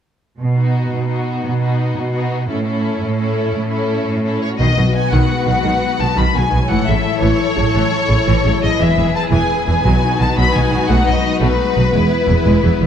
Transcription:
0.38 cello section B2
0.56 viola section B3, violin section D#4 F#4
0.92 cello section B2
1.09 viola section B3, violin section D#4 F#4
1.45 cello section B2
1.60 viola section B3, violin section D#4 F#4
1.96 cello section B2
2.12 viola section B3, violin section D#4 F#4
2.48 cello section A2, viola section C#4, violin section E4 A4
2.65 viola section C#4, violin section E4 A4
3.00 cello section A2
3.16 viola section C#4, violin section E4 A4
3.53 cello section A2
3.70 viola section C#4, violin section E4 A4
4.06 cello section A2
4.24 viola section C#4, violin section E4 A4
4.42 violin section C#5
4.58 double bass section B1, cello section B2, timpani B2, harp B2, viola section D#3 B3, violin section F#4 B4 D#5
4.77 double bass section B1, cello section B2, viola section D#3, harp F#3
4.95 harp D#4, violin section G#5
5.12 double bass section B1, cello section B2, viola section D#3, harp F#3, violin section F#5
5.31 harp G#3
5.47 double bass section B1, cello section B2, viola section D#3, harp F#3, violin section F#5
5.64 double bass section B1, cello section B2, harp B2, viola section D#3
5.84 harp B3
5.99 double bass section B1, cello section B2, viola section D#3, harp D#4, violin section A5
6.16 double bass section B1, cello section B2, viola section D#3, harp F#3, violin section B5
6.34 double bass section B1, cello section B2, viola section D#3, harp G#3, violin section G#5
6.52 double bass section B1, cello section B2, viola section D#3, harp F#3
6.69 double bass section A1, cello section A2, harp A2, viola section E3 E4, violin section A4 C#5 F#5
6.86 double bass section A1, cello section A2, viola section C#3, harp E3, violin section E5
7.06 harp E4
7.21 double bass section A1, cello section A2, viola section E3, harp E3, violin section C#5
7.40 harp F#3
7.56 double bass section A1, cello section A2, viola section C#3, harp E3
7.74 double bass section A1, harp A2, cello section A2, viola section E3
7.93 harp C#4
8.09 double bass section A1, cello section A2, viola section C#3, harp E4
8.26 double bass section A1, cello section A2, viola section E3, harp E3
8.44 double bass section A1, cello section A2, viola section C#3, harp F#3
8.62 double bass section A1, cello section A2, viola section C#3, harp E3, violin section D#5
8.79 double bass section E1, cello section E2, viola section E3, harp E3, violin section G#4 B4 E5
8.97 double bass section E1, cello section E2, viola section E3, harp B3
9.15 harp G#4, violin section A5
9.32 double bass section E1, cello section E2, viola section E3, harp B3, violin section G#5
9.53 harp C#4
9.67 double bass section E1, cello section E2, viola section E3, harp B3, violin section G#5
9.84 double bass section B1, timpani B2, cello section B2, harp B2, viola section F#3 D#4, violin section F#4
10.05 harp F#3
10.20 double bass section B1, cello section B2, viola section D#3, harp D#4, violin section A5
10.37 double bass section B1, cello section B2, viola section F#3, harp F#3, violin section B5
10.54 double bass section B1, cello section B2, viola section D#3, harp G#3, violin section G#5
10.72 double bass section B1, cello section B2, viola section D#3, harp F#3
10.88 double bass section B1, cello section B2, harp B2, viola section A3, violin section F#5
11.06 double bass section B1, cello section B2, viola section F#3, harp F#3, violin section D#5
11.24 harp D#4
11.41 double bass section B1, cello section B2, harp F#3, viola section A3, violin section B4
11.61 harp G#3
11.76 double bass section B1, cello section B2, viola section D#3, harp F#3
11.93 double bass section E1, cello section E2, harp E3, viola section G#3 B3, violin section E4
12.13 harp B3
12.28 double bass section E1, cello section E2, viola section E3, harp G#4
12.45 double bass section E1, cello section E2, viola section G#3, harp B3
12.62 double bass section E1, cello section E2, viola section E3, harp C#4
12.80 double bass section E1, cello section E2, viola section E3, harp B3

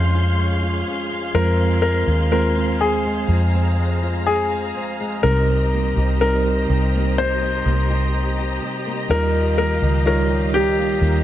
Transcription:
Already playing: fingered electric bass F2, nylon-string guitar F2 G#3 C#4 F4, tine electric piano G#3 C#4 F4 C5, string section C#4 G#4 F5 C6, grand piano C5
0.15 nylon-string guitar F4
0.39 nylon-string guitar C#4
0.63 nylon-string guitar F4
0.87 nylon-string guitar C#4
1.11 nylon-string guitar G#3
1.34 fingered electric bass F2, nylon-string guitar F2, tine electric piano G#3 C4 F4 C5, grand piano A#4, string section C5
1.59 nylon-string guitar C4
1.82 nylon-string guitar G#3, grand piano A#4
2.07 fingered electric bass D#2, nylon-string guitar F4
2.32 tine electric piano G#3 C4 F4 C5, nylon-string guitar C4, grand piano A#4
2.56 nylon-string guitar F4
2.81 nylon-string guitar C4, grand piano G#4
3.05 nylon-string guitar G#3
3.28 fingered electric bass F2, nylon-string guitar F2, string section A#5
3.54 nylon-string guitar C4
3.78 nylon-string guitar G#3
4.03 nylon-string guitar F4
4.26 nylon-string guitar C4, grand piano G#4
4.52 nylon-string guitar F4
4.76 nylon-string guitar C4
5.00 nylon-string guitar G#3
5.23 fingered electric bass C2, tine electric piano C3 G3 C4 D#4 A#4, nylon-string guitar C3, string section G4 C5 D#5, grand piano A#4
5.49 nylon-string guitar C4
5.74 nylon-string guitar A#3
5.96 fingered electric bass C2, nylon-string guitar G4
6.21 tine electric piano G3 C4 D#4 A#4, nylon-string guitar C4, grand piano A#4
6.46 nylon-string guitar G4
6.69 fingered electric bass C2, nylon-string guitar C4
6.94 nylon-string guitar A#3
7.18 nylon-string guitar C3, grand piano C5
7.42 nylon-string guitar C4
7.66 fingered electric bass C2, nylon-string guitar A#3
7.90 nylon-string guitar G4
8.14 nylon-string guitar C4
8.38 nylon-string guitar G4
8.62 nylon-string guitar C4
8.86 nylon-string guitar A#3
9.09 fingered electric bass D#2, nylon-string guitar D#3, tine electric piano D#3 G3 D#4 F4 A#4, grand piano A#4, string section F5
9.34 nylon-string guitar F4
9.58 nylon-string guitar A#3, grand piano A#4
9.82 fingered electric bass C#2, nylon-string guitar G4
10.06 tine electric piano G3 D#4 F4 C#5, nylon-string guitar F4, grand piano A#4
10.30 nylon-string guitar G4
10.54 nylon-string guitar F4, grand piano G4
10.78 nylon-string guitar A#3
11.01 fingered electric bass D#2, nylon-string guitar D#3

